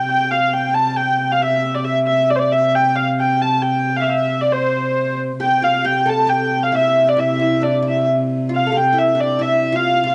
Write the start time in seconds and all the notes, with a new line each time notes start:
0.07 C3 G5
0.31 F5
0.53 G5
0.74 A5
0.96 G5
1.32 F5
1.42 E5
1.74 D5
1.84 E5
2.07 E5
2.30 D5
2.35 C5 D5
2.52 E5
2.75 G5
2.95 F5
3.20 G5
3.42 A5
3.62 G5
3.96 E5 F5
4.02 F5
4.09 E5
4.41 D5
4.52 C5
5.39 C3 G4 G5
5.62 F4 F5
5.85 G4 G5
6.06 A4 A5
6.27 G4 G5
6.63 F5
6.72 E4 E5
7.07 D4 D5
7.17 E4 E5
7.39 E4 E5
7.61 D4 D5
7.82 E4
7.88 E5
8.49 F4
8.55 F5
8.66 A4
8.72 G4
8.77 G5
8.93 E4
8.99 E5
9.15 D4
9.20 D5
9.39 E4 E5
9.72 F4 F5
10.04 F4 F5
10.10 F4